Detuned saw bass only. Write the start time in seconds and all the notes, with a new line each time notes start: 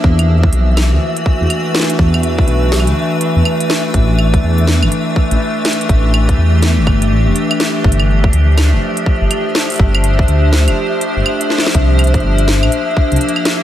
0.04 E2
0.53 B1
0.92 D2
1.41 E2
1.99 E2
2.48 B1
2.87 D2
3.36 E2
3.94 A1
4.43 E2
4.82 G1
5.31 A1
5.89 A1
6.38 E2
6.77 G1
7.11 A1
7.26 E1
7.84 G1
8.33 D2
8.73 F1
9.21 G1
9.79 G1
10.28 D2
10.68 F1
11.17 G1
11.75 C2
12.23 G1
12.63 A#1
13.12 C2